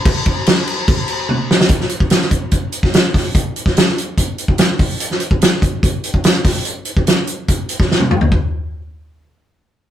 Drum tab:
CC |x-x-x-x-x-x-----|----------------|----------------|----------------|
HH |----------------|x-x-x-x-x-x-x-o-|x-x-x-x-x-x-x-o-|x-x-x-x-x-x-x-o-|
SD |----o---------oo|-o--oo-----oo-o-|---ooo------o---|-o--o-------o-o-|
T1 |------------o---|----------------|----------------|----------------|
T2 |----------------|----------------|----------------|----------------|
FT |----------------|----------------|----------------|----------------|
BD |o-o-----o-------|o--o--o-o--o--o-|o--o----o--o--o-|---o--o-o--o--o-|

CC |----------------|----------------|
HH |x-x-x-x-x-x-----|----------------|
SD |----o------oo---|----------------|
T1 |-------------o--|----------------|
T2 |--------------o-|----------------|
FT |---------------o|----------------|
BD |---o----o--o----|o---------------|